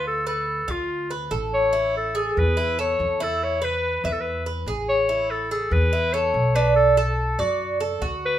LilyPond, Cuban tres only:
\new Staff \with { instrumentName = "Cuban tres" } { \time 4/4 \key a \major \tempo 4 = 143 f'8 b'4 f''4 b'8 a'4 | e'4 gis'4 e'8 a'4 e'8~ | e'8 b'4 e''4 b'8 gis'4 | e'4 gis'4 e'8 a'4 d'8~ |
d'8 a'4 d''4 a'8 fis'4 | }